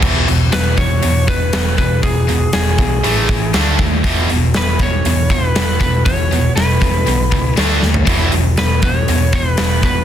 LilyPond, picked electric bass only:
\new Staff \with { instrumentName = "Picked electric bass" } { \clef bass \time 4/4 \key e \mixolydian \tempo 4 = 119 e,,8 e,,8 e,,8 e,,8 e,8 e,,8 e,,8 e,,8 | e,,4 e,,8 b,,8 a,,8 a,,8 d,8 dis,8 | e,,8 e,,8 e,,8 e,,8 e,8 e,,8 e,,8 e,,8 | e,,4 e,,8 e,,8 b,,8 cis,8 d,8 dis,8 |
e,,8 e,,8 e,,8 e,,8 e,8 e,,8 e,,8 e,,8 | }